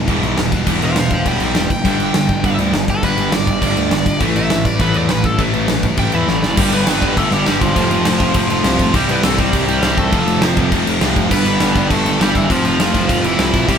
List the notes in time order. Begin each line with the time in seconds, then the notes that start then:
Already playing: E2 B2 E3
0.07 E1 E2 B2 E3 G3 B3, kick, crash
0.23 B1, crash
0.37 E1 E2 B2 E3 G3, snare, crash
0.50 E1 E2 B2 E3, kick, crash
0.66 E1 E2 B2 E3 G3 B3, kick, crash
0.82 E1 C5 F5, crash
0.95 E1 E2 B2 E3 G3 C5, snare, crash
1.00 F5
1.10 E1 C5 F5, kick, crash
1.25 E1 E2 B2 E3 G3 B3 D5 G5, kick, crash
1.40 B1 D5 G5, crash
1.54 E1 E2 B2 E3 G3 D5 G5, snare, crash
1.70 F#1 G5, kick, crash
1.83 G1 G2 D3 G3, kick, crash
1.99 G1, crash
2.14 G1 G2 D3, snare, crash
2.29 G1, kick, crash
2.43 G1 G2 D3 G3, kick, crash
2.59 D2, crash
2.73 G1 G2 D3, snare, crash
2.88 G1 A4, kick, crash
3.01 G1 G2 D3 G3 B4, kick, crash
3.17 G1, crash
3.31 G1 G2 D3 D5, snare, crash
3.47 G1, kick, crash
3.62 G1 G2 D3 G3 D5, kick, crash
3.76 D2, crash
3.90 G1 G2 D3, snare, crash
4.06 G1, kick, crash
4.20 A1 A2 E3 A3, kick, crash
4.35 A1 E5, crash
4.50 A1 A2 E3, snare, crash
4.65 A1 D5, kick, crash
4.79 A1 A2 E3 A3 B4, kick, crash
4.94 E2 D5, crash
5.09 A1 A2 E3 B4, snare, crash
5.24 A1 A4, kick, crash
5.37 A1 A2 E3 A3, kick, crash
5.54 A1, crash
5.66 A1 A2 E3, snare, crash
5.83 A1, kick, crash
5.97 A1 A2 E3 A3 G5, kick, crash
6.12 E2 E3 E4 E5, crash
6.26 A1 A2 E3 D5, snare
6.43 F#1 D5, snare
6.56 G1 G2 D3 G3 B3 D4 G4, kick, crash
6.71 G1 B3 B4, crash
6.86 G1 D3 G3 B3 D4 G4, snare, crash
6.90 G2
7.01 G1 G2 D3 G3, kick, crash
7.16 G1 G2 D3 G3 A3 B3 D4 G4 A4, kick, crash
7.31 G1 G3 G4, crash
7.45 G1 G2 D3 G3 B3 D4 G4, snare, crash
7.61 G1 F3 F4, kick, crash
7.75 F1 F2 C3 F3 A3 C4 F4, kick, crash
7.91 F1, crash
8.05 F1 F2 C3 F3 A3 C4 F4, snare, crash
8.20 F1 F2 C3 F3, kick, crash
8.34 F1 F2 C3 F3 A3 C4 F4, kick, crash
8.50 F1 F3 F4, crash
8.63 C2 F2 C3 F3 A3 C4 F4, snare, crash
8.79 F1, kick, crash
8.93 C2 C3 E3 G3 C4 E4 G4, kick, crash
9.08 C2 B3 B4, crash
9.23 C2 C3 E3 G3 A3 C4 E4 A4, snare, crash
9.37 C2 C3 G3 C4 G4, kick, crash
9.52 C2 C3 E3 G3 C4 E4, kick, crash
9.67 C2 G3 G4, crash
9.81 C2 C3 E3 G3 C4 E4, snare, crash
9.85 C4
9.97 C2 A3 A4, kick, crash
10.11 F1 F2 C3 F3 A3 C4 F4, kick, crash
10.26 F1, crash
10.41 F1 F2 C3 F3 A3 C4 F4, snare, crash
10.57 F1 F2 C3 F3, kick, crash
10.71 F1 F2 C3 F3 A3 C4 F4, kick, crash
10.86 F1, crash
11.00 C2 F2 C3 F3 A3 C4 F4, snare, crash
11.16 F1, kick, crash
11.30 G1 G2 D3 G3 B3 D4 G4 B4, kick, crash
11.45 G1, crash
11.59 G1 G2 D3 G3 B3 D4 G4, snare, crash
11.74 G1 G2 D3 G3, kick, crash
11.89 G1 G2 D3 G3 A3 B3 D4 G4 A4, kick, crash
12.05 G1, crash
12.18 G1 G2 D3 G3 B3 D4 G4, snare, crash
12.22 G3 G4
12.35 G1 E3 E4, kick, crash
12.48 F1 F2 C3 F3 A3 C4 F4, kick, crash
12.64 F1 F3 F4, crash
12.78 F1 F2 C3 F3 A3 C4 F4, snare, crash
12.93 F1 F2 C3 F3, kick, crash
13.07 F1 F2 C3 F3 A3 C4 F4, kick, crash
13.24 F1 E3 E4, crash
13.37 C2 F2 C3 F3 A3 C4 F4, snare, crash
13.54 B1, kick, crash
13.67 C2 C3 E3 G3 C4 E4 G4, kick, crash